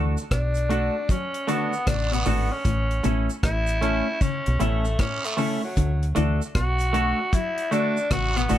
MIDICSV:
0, 0, Header, 1, 7, 480
1, 0, Start_track
1, 0, Tempo, 780234
1, 1631, Time_signature, 4, 2, 24, 8
1, 5278, End_track
2, 0, Start_track
2, 0, Title_t, "Clean electric guitar"
2, 0, Program_c, 0, 27
2, 0, Note_on_c, 0, 57, 70
2, 0, Note_on_c, 0, 62, 84
2, 0, Note_on_c, 0, 66, 75
2, 0, Note_on_c, 0, 69, 85
2, 97, Note_off_c, 0, 57, 0
2, 99, Note_off_c, 0, 62, 0
2, 101, Note_off_c, 0, 66, 0
2, 103, Note_off_c, 0, 69, 0
2, 427, Note_on_c, 0, 57, 89
2, 433, Note_on_c, 0, 62, 84
2, 436, Note_on_c, 0, 66, 92
2, 440, Note_on_c, 0, 69, 88
2, 578, Note_off_c, 0, 57, 0
2, 582, Note_off_c, 0, 62, 0
2, 583, Note_off_c, 0, 66, 0
2, 585, Note_off_c, 0, 69, 0
2, 907, Note_on_c, 0, 57, 82
2, 912, Note_on_c, 0, 62, 90
2, 915, Note_on_c, 0, 66, 98
2, 919, Note_on_c, 0, 69, 84
2, 1058, Note_off_c, 0, 57, 0
2, 1061, Note_off_c, 0, 62, 0
2, 1063, Note_off_c, 0, 66, 0
2, 1064, Note_off_c, 0, 69, 0
2, 1389, Note_on_c, 0, 57, 85
2, 1393, Note_on_c, 0, 62, 85
2, 1397, Note_on_c, 0, 66, 91
2, 1400, Note_on_c, 0, 69, 91
2, 1536, Note_off_c, 0, 69, 0
2, 1540, Note_off_c, 0, 57, 0
2, 1541, Note_off_c, 0, 66, 0
2, 1542, Note_off_c, 0, 62, 0
2, 1867, Note_on_c, 0, 57, 66
2, 1871, Note_on_c, 0, 61, 75
2, 1875, Note_on_c, 0, 64, 70
2, 1877, Note_on_c, 0, 69, 69
2, 2019, Note_off_c, 0, 57, 0
2, 2021, Note_off_c, 0, 61, 0
2, 2023, Note_off_c, 0, 64, 0
2, 2024, Note_off_c, 0, 69, 0
2, 2346, Note_on_c, 0, 57, 82
2, 2350, Note_on_c, 0, 61, 88
2, 2354, Note_on_c, 0, 64, 88
2, 2356, Note_on_c, 0, 69, 90
2, 2498, Note_off_c, 0, 57, 0
2, 2500, Note_off_c, 0, 61, 0
2, 2502, Note_off_c, 0, 64, 0
2, 2503, Note_off_c, 0, 69, 0
2, 2827, Note_on_c, 0, 57, 76
2, 2831, Note_on_c, 0, 61, 79
2, 2834, Note_on_c, 0, 64, 81
2, 2838, Note_on_c, 0, 69, 92
2, 2979, Note_off_c, 0, 57, 0
2, 2981, Note_off_c, 0, 61, 0
2, 2982, Note_off_c, 0, 64, 0
2, 2984, Note_off_c, 0, 69, 0
2, 3303, Note_on_c, 0, 57, 93
2, 3308, Note_on_c, 0, 61, 88
2, 3312, Note_on_c, 0, 64, 86
2, 3315, Note_on_c, 0, 69, 99
2, 3453, Note_off_c, 0, 69, 0
2, 3457, Note_off_c, 0, 57, 0
2, 3459, Note_off_c, 0, 61, 0
2, 3459, Note_off_c, 0, 64, 0
2, 3783, Note_on_c, 0, 57, 94
2, 3788, Note_on_c, 0, 62, 94
2, 3792, Note_on_c, 0, 66, 82
2, 3796, Note_on_c, 0, 69, 82
2, 3937, Note_off_c, 0, 57, 0
2, 3939, Note_off_c, 0, 62, 0
2, 3941, Note_off_c, 0, 66, 0
2, 3943, Note_off_c, 0, 69, 0
2, 4262, Note_on_c, 0, 57, 100
2, 4267, Note_on_c, 0, 62, 82
2, 4271, Note_on_c, 0, 66, 113
2, 4275, Note_on_c, 0, 69, 105
2, 4416, Note_off_c, 0, 57, 0
2, 4418, Note_off_c, 0, 62, 0
2, 4420, Note_off_c, 0, 66, 0
2, 4422, Note_off_c, 0, 69, 0
2, 4744, Note_on_c, 0, 57, 86
2, 4749, Note_on_c, 0, 62, 91
2, 4754, Note_on_c, 0, 66, 105
2, 4756, Note_on_c, 0, 69, 94
2, 4897, Note_off_c, 0, 57, 0
2, 4899, Note_off_c, 0, 62, 0
2, 4901, Note_off_c, 0, 66, 0
2, 4903, Note_off_c, 0, 69, 0
2, 5224, Note_on_c, 0, 57, 84
2, 5228, Note_on_c, 0, 62, 97
2, 5232, Note_on_c, 0, 66, 88
2, 5235, Note_on_c, 0, 69, 88
2, 5278, Note_off_c, 0, 57, 0
2, 5278, Note_off_c, 0, 62, 0
2, 5278, Note_off_c, 0, 66, 0
2, 5278, Note_off_c, 0, 69, 0
2, 5278, End_track
3, 0, Start_track
3, 0, Title_t, "Tenor saxophone"
3, 0, Program_c, 1, 66
3, 201, Note_on_c, 1, 62, 94
3, 678, Note_on_c, 1, 61, 99
3, 687, Note_off_c, 1, 62, 0
3, 919, Note_on_c, 1, 59, 93
3, 928, Note_off_c, 1, 61, 0
3, 1153, Note_on_c, 1, 62, 91
3, 1163, Note_off_c, 1, 59, 0
3, 1309, Note_on_c, 1, 59, 99
3, 1318, Note_off_c, 1, 62, 0
3, 1550, Note_on_c, 1, 61, 106
3, 1559, Note_off_c, 1, 59, 0
3, 2028, Note_off_c, 1, 61, 0
3, 2114, Note_on_c, 1, 64, 103
3, 2594, Note_on_c, 1, 61, 102
3, 2604, Note_off_c, 1, 64, 0
3, 2833, Note_on_c, 1, 57, 86
3, 2843, Note_off_c, 1, 61, 0
3, 3076, Note_on_c, 1, 61, 94
3, 3085, Note_off_c, 1, 57, 0
3, 3232, Note_on_c, 1, 57, 83
3, 3241, Note_off_c, 1, 61, 0
3, 3465, Note_off_c, 1, 57, 0
3, 3469, Note_on_c, 1, 54, 74
3, 3739, Note_off_c, 1, 54, 0
3, 4034, Note_on_c, 1, 66, 106
3, 4514, Note_on_c, 1, 64, 108
3, 4524, Note_off_c, 1, 66, 0
3, 4753, Note_on_c, 1, 62, 93
3, 4763, Note_off_c, 1, 64, 0
3, 4994, Note_on_c, 1, 66, 107
3, 5003, Note_off_c, 1, 62, 0
3, 5152, Note_on_c, 1, 59, 92
3, 5161, Note_off_c, 1, 66, 0
3, 5278, Note_off_c, 1, 59, 0
3, 5278, End_track
4, 0, Start_track
4, 0, Title_t, "Clean electric guitar"
4, 0, Program_c, 2, 27
4, 0, Note_on_c, 2, 52, 80
4, 64, Note_off_c, 2, 52, 0
4, 671, Note_on_c, 2, 54, 71
4, 784, Note_off_c, 2, 54, 0
4, 911, Note_on_c, 2, 50, 81
4, 1024, Note_off_c, 2, 50, 0
4, 1148, Note_on_c, 2, 49, 81
4, 1262, Note_off_c, 2, 49, 0
4, 1305, Note_on_c, 2, 47, 71
4, 1367, Note_off_c, 2, 47, 0
4, 1389, Note_on_c, 2, 45, 75
4, 1503, Note_off_c, 2, 45, 0
4, 1631, Note_on_c, 2, 45, 79
4, 1745, Note_off_c, 2, 45, 0
4, 1870, Note_on_c, 2, 47, 77
4, 1984, Note_off_c, 2, 47, 0
4, 2591, Note_on_c, 2, 49, 96
4, 2705, Note_off_c, 2, 49, 0
4, 2831, Note_on_c, 2, 47, 76
4, 2944, Note_off_c, 2, 47, 0
4, 3072, Note_on_c, 2, 45, 83
4, 3185, Note_off_c, 2, 45, 0
4, 3312, Note_on_c, 2, 49, 77
4, 3425, Note_off_c, 2, 49, 0
4, 3552, Note_on_c, 2, 50, 73
4, 3665, Note_off_c, 2, 50, 0
4, 3792, Note_on_c, 2, 52, 80
4, 3905, Note_off_c, 2, 52, 0
4, 4510, Note_on_c, 2, 54, 83
4, 4623, Note_off_c, 2, 54, 0
4, 4750, Note_on_c, 2, 50, 68
4, 4863, Note_off_c, 2, 50, 0
4, 4991, Note_on_c, 2, 49, 80
4, 5104, Note_off_c, 2, 49, 0
4, 5146, Note_on_c, 2, 47, 81
4, 5207, Note_off_c, 2, 47, 0
4, 5230, Note_on_c, 2, 45, 75
4, 5278, Note_off_c, 2, 45, 0
4, 5278, End_track
5, 0, Start_track
5, 0, Title_t, "Fingered electric bass"
5, 0, Program_c, 3, 33
5, 0, Note_on_c, 3, 38, 101
5, 91, Note_off_c, 3, 38, 0
5, 195, Note_on_c, 3, 35, 94
5, 543, Note_off_c, 3, 35, 0
5, 1155, Note_on_c, 3, 33, 86
5, 1366, Note_off_c, 3, 33, 0
5, 1394, Note_on_c, 3, 32, 90
5, 1530, Note_off_c, 3, 32, 0
5, 1635, Note_on_c, 3, 33, 111
5, 1846, Note_off_c, 3, 33, 0
5, 1880, Note_on_c, 3, 33, 84
5, 2013, Note_off_c, 3, 33, 0
5, 2115, Note_on_c, 3, 33, 92
5, 2463, Note_off_c, 3, 33, 0
5, 2753, Note_on_c, 3, 35, 91
5, 2825, Note_off_c, 3, 35, 0
5, 2836, Note_on_c, 3, 33, 83
5, 3046, Note_off_c, 3, 33, 0
5, 3553, Note_on_c, 3, 38, 115
5, 3764, Note_off_c, 3, 38, 0
5, 3798, Note_on_c, 3, 38, 109
5, 3932, Note_off_c, 3, 38, 0
5, 4034, Note_on_c, 3, 35, 91
5, 4382, Note_off_c, 3, 35, 0
5, 4991, Note_on_c, 3, 33, 86
5, 5203, Note_off_c, 3, 33, 0
5, 5236, Note_on_c, 3, 32, 88
5, 5278, Note_off_c, 3, 32, 0
5, 5278, End_track
6, 0, Start_track
6, 0, Title_t, "Muted clean electric guitar strokes"
6, 1543, Note_on_c, 9, 29, 44
6, 1605, Note_off_c, 9, 29, 0
6, 3461, Note_on_c, 9, 29, 52
6, 3522, Note_off_c, 9, 29, 0
6, 5278, End_track
7, 0, Start_track
7, 0, Title_t, "Drums"
7, 108, Note_on_c, 9, 69, 77
7, 169, Note_off_c, 9, 69, 0
7, 191, Note_on_c, 9, 36, 102
7, 194, Note_on_c, 9, 37, 106
7, 194, Note_on_c, 9, 42, 90
7, 253, Note_off_c, 9, 36, 0
7, 255, Note_off_c, 9, 37, 0
7, 255, Note_off_c, 9, 42, 0
7, 335, Note_on_c, 9, 69, 57
7, 350, Note_on_c, 9, 42, 54
7, 396, Note_off_c, 9, 69, 0
7, 412, Note_off_c, 9, 42, 0
7, 434, Note_on_c, 9, 42, 77
7, 495, Note_off_c, 9, 42, 0
7, 671, Note_on_c, 9, 36, 120
7, 673, Note_on_c, 9, 69, 69
7, 675, Note_on_c, 9, 42, 82
7, 733, Note_off_c, 9, 36, 0
7, 735, Note_off_c, 9, 69, 0
7, 736, Note_off_c, 9, 42, 0
7, 826, Note_on_c, 9, 42, 56
7, 887, Note_off_c, 9, 42, 0
7, 910, Note_on_c, 9, 69, 49
7, 914, Note_on_c, 9, 42, 69
7, 972, Note_off_c, 9, 69, 0
7, 975, Note_off_c, 9, 42, 0
7, 1064, Note_on_c, 9, 69, 68
7, 1126, Note_off_c, 9, 69, 0
7, 1150, Note_on_c, 9, 36, 105
7, 1150, Note_on_c, 9, 42, 93
7, 1151, Note_on_c, 9, 74, 66
7, 1154, Note_on_c, 9, 37, 118
7, 1212, Note_off_c, 9, 36, 0
7, 1212, Note_off_c, 9, 42, 0
7, 1212, Note_off_c, 9, 74, 0
7, 1215, Note_off_c, 9, 37, 0
7, 1312, Note_on_c, 9, 42, 53
7, 1312, Note_on_c, 9, 69, 53
7, 1373, Note_off_c, 9, 42, 0
7, 1373, Note_off_c, 9, 69, 0
7, 1385, Note_on_c, 9, 69, 85
7, 1389, Note_on_c, 9, 46, 61
7, 1447, Note_off_c, 9, 69, 0
7, 1450, Note_off_c, 9, 46, 0
7, 1628, Note_on_c, 9, 69, 66
7, 1631, Note_on_c, 9, 36, 109
7, 1632, Note_on_c, 9, 42, 98
7, 1689, Note_off_c, 9, 69, 0
7, 1692, Note_off_c, 9, 36, 0
7, 1694, Note_off_c, 9, 42, 0
7, 1790, Note_on_c, 9, 42, 47
7, 1851, Note_off_c, 9, 42, 0
7, 1869, Note_on_c, 9, 69, 52
7, 1870, Note_on_c, 9, 42, 60
7, 1931, Note_off_c, 9, 69, 0
7, 1932, Note_off_c, 9, 42, 0
7, 2027, Note_on_c, 9, 42, 28
7, 2029, Note_on_c, 9, 69, 78
7, 2088, Note_off_c, 9, 42, 0
7, 2091, Note_off_c, 9, 69, 0
7, 2111, Note_on_c, 9, 36, 111
7, 2113, Note_on_c, 9, 37, 106
7, 2113, Note_on_c, 9, 42, 78
7, 2173, Note_off_c, 9, 36, 0
7, 2175, Note_off_c, 9, 37, 0
7, 2175, Note_off_c, 9, 42, 0
7, 2256, Note_on_c, 9, 69, 62
7, 2268, Note_on_c, 9, 42, 51
7, 2317, Note_off_c, 9, 69, 0
7, 2330, Note_off_c, 9, 42, 0
7, 2353, Note_on_c, 9, 42, 76
7, 2414, Note_off_c, 9, 42, 0
7, 2590, Note_on_c, 9, 36, 119
7, 2591, Note_on_c, 9, 69, 65
7, 2593, Note_on_c, 9, 42, 83
7, 2652, Note_off_c, 9, 36, 0
7, 2653, Note_off_c, 9, 69, 0
7, 2655, Note_off_c, 9, 42, 0
7, 2745, Note_on_c, 9, 42, 55
7, 2806, Note_off_c, 9, 42, 0
7, 2831, Note_on_c, 9, 69, 51
7, 2832, Note_on_c, 9, 42, 63
7, 2892, Note_off_c, 9, 69, 0
7, 2893, Note_off_c, 9, 42, 0
7, 2983, Note_on_c, 9, 69, 61
7, 3045, Note_off_c, 9, 69, 0
7, 3070, Note_on_c, 9, 36, 110
7, 3070, Note_on_c, 9, 42, 85
7, 3071, Note_on_c, 9, 74, 68
7, 3073, Note_on_c, 9, 37, 112
7, 3131, Note_off_c, 9, 36, 0
7, 3131, Note_off_c, 9, 42, 0
7, 3132, Note_off_c, 9, 74, 0
7, 3135, Note_off_c, 9, 37, 0
7, 3230, Note_on_c, 9, 42, 54
7, 3233, Note_on_c, 9, 69, 54
7, 3291, Note_off_c, 9, 42, 0
7, 3294, Note_off_c, 9, 69, 0
7, 3307, Note_on_c, 9, 69, 77
7, 3308, Note_on_c, 9, 46, 76
7, 3368, Note_off_c, 9, 69, 0
7, 3370, Note_off_c, 9, 46, 0
7, 3548, Note_on_c, 9, 69, 71
7, 3550, Note_on_c, 9, 36, 101
7, 3551, Note_on_c, 9, 42, 93
7, 3609, Note_off_c, 9, 69, 0
7, 3611, Note_off_c, 9, 36, 0
7, 3613, Note_off_c, 9, 42, 0
7, 3708, Note_on_c, 9, 42, 48
7, 3770, Note_off_c, 9, 42, 0
7, 3789, Note_on_c, 9, 42, 69
7, 3790, Note_on_c, 9, 69, 54
7, 3850, Note_off_c, 9, 42, 0
7, 3852, Note_off_c, 9, 69, 0
7, 3949, Note_on_c, 9, 69, 76
7, 4010, Note_off_c, 9, 69, 0
7, 4030, Note_on_c, 9, 36, 110
7, 4030, Note_on_c, 9, 37, 98
7, 4030, Note_on_c, 9, 42, 81
7, 4091, Note_off_c, 9, 36, 0
7, 4092, Note_off_c, 9, 37, 0
7, 4092, Note_off_c, 9, 42, 0
7, 4175, Note_on_c, 9, 69, 58
7, 4187, Note_on_c, 9, 42, 59
7, 4237, Note_off_c, 9, 69, 0
7, 4248, Note_off_c, 9, 42, 0
7, 4271, Note_on_c, 9, 42, 80
7, 4333, Note_off_c, 9, 42, 0
7, 4509, Note_on_c, 9, 36, 116
7, 4509, Note_on_c, 9, 69, 65
7, 4511, Note_on_c, 9, 42, 95
7, 4570, Note_off_c, 9, 36, 0
7, 4571, Note_off_c, 9, 69, 0
7, 4573, Note_off_c, 9, 42, 0
7, 4662, Note_on_c, 9, 42, 59
7, 4723, Note_off_c, 9, 42, 0
7, 4750, Note_on_c, 9, 69, 55
7, 4752, Note_on_c, 9, 42, 61
7, 4811, Note_off_c, 9, 69, 0
7, 4813, Note_off_c, 9, 42, 0
7, 4903, Note_on_c, 9, 69, 68
7, 4964, Note_off_c, 9, 69, 0
7, 4988, Note_on_c, 9, 36, 106
7, 4988, Note_on_c, 9, 42, 104
7, 4988, Note_on_c, 9, 74, 62
7, 4991, Note_on_c, 9, 37, 113
7, 5049, Note_off_c, 9, 42, 0
7, 5050, Note_off_c, 9, 36, 0
7, 5050, Note_off_c, 9, 74, 0
7, 5053, Note_off_c, 9, 37, 0
7, 5148, Note_on_c, 9, 42, 56
7, 5151, Note_on_c, 9, 69, 54
7, 5210, Note_off_c, 9, 42, 0
7, 5213, Note_off_c, 9, 69, 0
7, 5224, Note_on_c, 9, 69, 89
7, 5225, Note_on_c, 9, 46, 67
7, 5278, Note_off_c, 9, 46, 0
7, 5278, Note_off_c, 9, 69, 0
7, 5278, End_track
0, 0, End_of_file